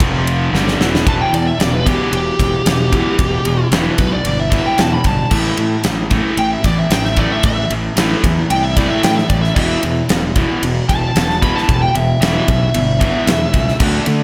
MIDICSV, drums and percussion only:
0, 0, Header, 1, 2, 480
1, 0, Start_track
1, 0, Key_signature, 1, "minor"
1, 0, Tempo, 530973
1, 963, Time_signature, 4, 2, 24, 8
1, 12868, End_track
2, 0, Start_track
2, 0, Title_t, "Drums"
2, 3, Note_on_c, 9, 36, 121
2, 3, Note_on_c, 9, 51, 111
2, 93, Note_off_c, 9, 36, 0
2, 93, Note_off_c, 9, 51, 0
2, 247, Note_on_c, 9, 51, 77
2, 337, Note_off_c, 9, 51, 0
2, 494, Note_on_c, 9, 38, 66
2, 584, Note_off_c, 9, 38, 0
2, 613, Note_on_c, 9, 38, 65
2, 703, Note_off_c, 9, 38, 0
2, 731, Note_on_c, 9, 38, 90
2, 821, Note_off_c, 9, 38, 0
2, 859, Note_on_c, 9, 38, 93
2, 949, Note_off_c, 9, 38, 0
2, 964, Note_on_c, 9, 36, 114
2, 965, Note_on_c, 9, 51, 94
2, 1055, Note_off_c, 9, 36, 0
2, 1055, Note_off_c, 9, 51, 0
2, 1209, Note_on_c, 9, 51, 76
2, 1299, Note_off_c, 9, 51, 0
2, 1446, Note_on_c, 9, 51, 89
2, 1456, Note_on_c, 9, 38, 101
2, 1536, Note_off_c, 9, 51, 0
2, 1547, Note_off_c, 9, 38, 0
2, 1686, Note_on_c, 9, 36, 90
2, 1689, Note_on_c, 9, 51, 87
2, 1776, Note_off_c, 9, 36, 0
2, 1779, Note_off_c, 9, 51, 0
2, 1923, Note_on_c, 9, 51, 108
2, 2013, Note_off_c, 9, 51, 0
2, 2165, Note_on_c, 9, 36, 83
2, 2168, Note_on_c, 9, 51, 81
2, 2255, Note_off_c, 9, 36, 0
2, 2258, Note_off_c, 9, 51, 0
2, 2404, Note_on_c, 9, 51, 109
2, 2415, Note_on_c, 9, 38, 106
2, 2494, Note_off_c, 9, 51, 0
2, 2505, Note_off_c, 9, 38, 0
2, 2644, Note_on_c, 9, 51, 73
2, 2645, Note_on_c, 9, 36, 80
2, 2735, Note_off_c, 9, 36, 0
2, 2735, Note_off_c, 9, 51, 0
2, 2881, Note_on_c, 9, 51, 105
2, 2884, Note_on_c, 9, 36, 114
2, 2971, Note_off_c, 9, 51, 0
2, 2974, Note_off_c, 9, 36, 0
2, 3120, Note_on_c, 9, 51, 86
2, 3210, Note_off_c, 9, 51, 0
2, 3360, Note_on_c, 9, 51, 99
2, 3371, Note_on_c, 9, 38, 112
2, 3450, Note_off_c, 9, 51, 0
2, 3461, Note_off_c, 9, 38, 0
2, 3598, Note_on_c, 9, 51, 80
2, 3604, Note_on_c, 9, 36, 99
2, 3689, Note_off_c, 9, 51, 0
2, 3695, Note_off_c, 9, 36, 0
2, 3839, Note_on_c, 9, 51, 104
2, 3930, Note_off_c, 9, 51, 0
2, 4083, Note_on_c, 9, 51, 81
2, 4085, Note_on_c, 9, 36, 91
2, 4174, Note_off_c, 9, 51, 0
2, 4175, Note_off_c, 9, 36, 0
2, 4319, Note_on_c, 9, 51, 96
2, 4330, Note_on_c, 9, 38, 113
2, 4410, Note_off_c, 9, 51, 0
2, 4421, Note_off_c, 9, 38, 0
2, 4557, Note_on_c, 9, 51, 76
2, 4563, Note_on_c, 9, 36, 83
2, 4647, Note_off_c, 9, 51, 0
2, 4654, Note_off_c, 9, 36, 0
2, 4798, Note_on_c, 9, 49, 102
2, 4803, Note_on_c, 9, 36, 116
2, 4889, Note_off_c, 9, 49, 0
2, 4894, Note_off_c, 9, 36, 0
2, 5038, Note_on_c, 9, 51, 74
2, 5129, Note_off_c, 9, 51, 0
2, 5275, Note_on_c, 9, 51, 102
2, 5286, Note_on_c, 9, 38, 119
2, 5365, Note_off_c, 9, 51, 0
2, 5376, Note_off_c, 9, 38, 0
2, 5519, Note_on_c, 9, 51, 75
2, 5525, Note_on_c, 9, 36, 94
2, 5610, Note_off_c, 9, 51, 0
2, 5615, Note_off_c, 9, 36, 0
2, 5761, Note_on_c, 9, 51, 105
2, 5852, Note_off_c, 9, 51, 0
2, 6003, Note_on_c, 9, 51, 78
2, 6005, Note_on_c, 9, 36, 85
2, 6093, Note_off_c, 9, 51, 0
2, 6096, Note_off_c, 9, 36, 0
2, 6242, Note_on_c, 9, 51, 110
2, 6253, Note_on_c, 9, 38, 105
2, 6332, Note_off_c, 9, 51, 0
2, 6343, Note_off_c, 9, 38, 0
2, 6370, Note_on_c, 9, 38, 31
2, 6461, Note_off_c, 9, 38, 0
2, 6477, Note_on_c, 9, 51, 69
2, 6482, Note_on_c, 9, 36, 80
2, 6567, Note_off_c, 9, 51, 0
2, 6573, Note_off_c, 9, 36, 0
2, 6719, Note_on_c, 9, 51, 112
2, 6724, Note_on_c, 9, 36, 114
2, 6809, Note_off_c, 9, 51, 0
2, 6814, Note_off_c, 9, 36, 0
2, 6965, Note_on_c, 9, 51, 84
2, 7056, Note_off_c, 9, 51, 0
2, 7203, Note_on_c, 9, 51, 116
2, 7213, Note_on_c, 9, 38, 112
2, 7293, Note_off_c, 9, 51, 0
2, 7304, Note_off_c, 9, 38, 0
2, 7447, Note_on_c, 9, 36, 87
2, 7448, Note_on_c, 9, 51, 91
2, 7537, Note_off_c, 9, 36, 0
2, 7538, Note_off_c, 9, 51, 0
2, 7686, Note_on_c, 9, 51, 119
2, 7776, Note_off_c, 9, 51, 0
2, 7924, Note_on_c, 9, 51, 85
2, 7926, Note_on_c, 9, 36, 89
2, 8015, Note_off_c, 9, 51, 0
2, 8016, Note_off_c, 9, 36, 0
2, 8165, Note_on_c, 9, 51, 100
2, 8176, Note_on_c, 9, 38, 116
2, 8256, Note_off_c, 9, 51, 0
2, 8267, Note_off_c, 9, 38, 0
2, 8301, Note_on_c, 9, 38, 34
2, 8391, Note_off_c, 9, 38, 0
2, 8404, Note_on_c, 9, 51, 76
2, 8406, Note_on_c, 9, 36, 87
2, 8495, Note_off_c, 9, 51, 0
2, 8496, Note_off_c, 9, 36, 0
2, 8533, Note_on_c, 9, 38, 31
2, 8624, Note_off_c, 9, 38, 0
2, 8645, Note_on_c, 9, 57, 97
2, 8646, Note_on_c, 9, 36, 114
2, 8736, Note_off_c, 9, 36, 0
2, 8736, Note_off_c, 9, 57, 0
2, 8884, Note_on_c, 9, 51, 84
2, 8975, Note_off_c, 9, 51, 0
2, 9122, Note_on_c, 9, 51, 100
2, 9133, Note_on_c, 9, 38, 121
2, 9213, Note_off_c, 9, 51, 0
2, 9224, Note_off_c, 9, 38, 0
2, 9362, Note_on_c, 9, 51, 78
2, 9365, Note_on_c, 9, 36, 95
2, 9452, Note_off_c, 9, 51, 0
2, 9455, Note_off_c, 9, 36, 0
2, 9607, Note_on_c, 9, 51, 116
2, 9698, Note_off_c, 9, 51, 0
2, 9848, Note_on_c, 9, 36, 91
2, 9849, Note_on_c, 9, 51, 69
2, 9938, Note_off_c, 9, 36, 0
2, 9939, Note_off_c, 9, 51, 0
2, 10085, Note_on_c, 9, 51, 104
2, 10096, Note_on_c, 9, 38, 110
2, 10175, Note_off_c, 9, 51, 0
2, 10186, Note_off_c, 9, 38, 0
2, 10216, Note_on_c, 9, 38, 28
2, 10306, Note_off_c, 9, 38, 0
2, 10327, Note_on_c, 9, 36, 80
2, 10330, Note_on_c, 9, 51, 66
2, 10418, Note_off_c, 9, 36, 0
2, 10420, Note_off_c, 9, 51, 0
2, 10463, Note_on_c, 9, 38, 32
2, 10554, Note_off_c, 9, 38, 0
2, 10566, Note_on_c, 9, 51, 96
2, 10567, Note_on_c, 9, 36, 117
2, 10656, Note_off_c, 9, 51, 0
2, 10657, Note_off_c, 9, 36, 0
2, 10806, Note_on_c, 9, 51, 87
2, 10896, Note_off_c, 9, 51, 0
2, 11045, Note_on_c, 9, 51, 102
2, 11056, Note_on_c, 9, 38, 118
2, 11136, Note_off_c, 9, 51, 0
2, 11147, Note_off_c, 9, 38, 0
2, 11283, Note_on_c, 9, 51, 88
2, 11285, Note_on_c, 9, 36, 100
2, 11373, Note_off_c, 9, 51, 0
2, 11376, Note_off_c, 9, 36, 0
2, 11520, Note_on_c, 9, 51, 118
2, 11610, Note_off_c, 9, 51, 0
2, 11761, Note_on_c, 9, 51, 79
2, 11763, Note_on_c, 9, 36, 96
2, 11851, Note_off_c, 9, 51, 0
2, 11854, Note_off_c, 9, 36, 0
2, 11999, Note_on_c, 9, 51, 109
2, 12010, Note_on_c, 9, 38, 112
2, 12089, Note_off_c, 9, 51, 0
2, 12100, Note_off_c, 9, 38, 0
2, 12236, Note_on_c, 9, 51, 74
2, 12240, Note_on_c, 9, 36, 79
2, 12327, Note_off_c, 9, 51, 0
2, 12330, Note_off_c, 9, 36, 0
2, 12370, Note_on_c, 9, 38, 36
2, 12460, Note_off_c, 9, 38, 0
2, 12474, Note_on_c, 9, 57, 105
2, 12478, Note_on_c, 9, 36, 125
2, 12564, Note_off_c, 9, 57, 0
2, 12568, Note_off_c, 9, 36, 0
2, 12711, Note_on_c, 9, 51, 82
2, 12801, Note_off_c, 9, 51, 0
2, 12868, End_track
0, 0, End_of_file